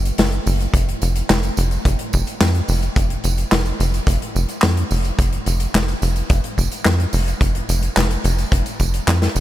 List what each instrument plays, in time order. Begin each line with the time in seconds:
Already playing: analog synth bass F#1
0.05 closed hi-hat, tambourine
0.18 analog synth bass F#1, snare, closed hi-hat, tambourine
0.32 closed hi-hat
0.46 analog synth bass F#1, open hi-hat, tambourine
0.60 closed hi-hat, tambourine
0.74 analog synth bass F1, kick, closed hi-hat, tambourine
0.89 closed hi-hat
1.02 analog synth bass F1, closed hi-hat, tambourine
1.16 closed hi-hat, tambourine
1.30 analog synth bass F1, snare, clap, closed hi-hat, tambourine
1.43 closed hi-hat, tambourine
1.57 analog synth bass F1, closed hi-hat, tambourine
1.71 closed hi-hat, tambourine
1.85 analog synth bass F1, kick, closed hi-hat, tambourine
1.99 closed hi-hat
2.13 analog synth bass F1, kick, tambourine
2.27 closed hi-hat, tambourine
2.41 analog synth bass F2, snare, clap, closed hi-hat, tambourine
2.55 closed hi-hat
2.68 analog synth bass F1, open hi-hat, tambourine
2.83 closed hi-hat, tambourine
2.96 analog synth bass F1, kick, closed hi-hat, tambourine
3.10 closed hi-hat
3.24 analog synth bass F1, closed hi-hat, tambourine
3.38 closed hi-hat, tambourine
3.52 analog synth bass F1, snare, clap, closed hi-hat, tambourine
3.66 closed hi-hat, tambourine
3.80 analog synth bass F1, closed hi-hat, tambourine
3.94 closed hi-hat, tambourine
4.07 analog synth bass F1, kick, closed hi-hat, tambourine
4.22 closed hi-hat
4.35 analog synth bass F1, tambourine
4.49 closed hi-hat, tambourine
4.62 analog synth bass F2, snare, clap, closed hi-hat, tambourine
4.77 closed hi-hat
4.91 analog synth bass F1, open hi-hat, tambourine
5.05 closed hi-hat, tambourine
5.18 analog synth bass F1, kick, closed hi-hat, tambourine
5.33 closed hi-hat
5.46 analog synth bass F1, closed hi-hat, tambourine
5.60 closed hi-hat, tambourine
5.74 analog synth bass F1, snare, clap, closed hi-hat, tambourine
5.88 closed hi-hat, tambourine
6.02 analog synth bass F1, closed hi-hat, tambourine
6.16 closed hi-hat, tambourine
6.30 analog synth bass F1, kick, closed hi-hat, tambourine
6.44 closed hi-hat
6.58 analog synth bass F1, kick, tambourine
6.72 closed hi-hat, tambourine
6.85 analog synth bass F2, snare, clap, closed hi-hat, tambourine
7.00 closed hi-hat
7.13 analog synth bass F1, open hi-hat, tambourine
7.28 closed hi-hat, tambourine
7.41 analog synth bass F1, kick, closed hi-hat, tambourine
7.55 closed hi-hat
7.69 analog synth bass F1, closed hi-hat, tambourine
7.83 closed hi-hat, tambourine
7.97 analog synth bass F1, snare, clap, closed hi-hat, tambourine
8.11 closed hi-hat, tambourine
8.24 analog synth bass F1, closed hi-hat, tambourine
8.38 closed hi-hat, tambourine
8.52 analog synth bass F1, kick, closed hi-hat, tambourine
8.66 closed hi-hat, tambourine
8.80 analog synth bass F1, kick, tambourine
8.94 closed hi-hat, tambourine
9.08 analog synth bass F2, snare, clap, closed hi-hat, tambourine
9.22 snare, closed hi-hat
9.35 analog synth bass F1, open hi-hat, tambourine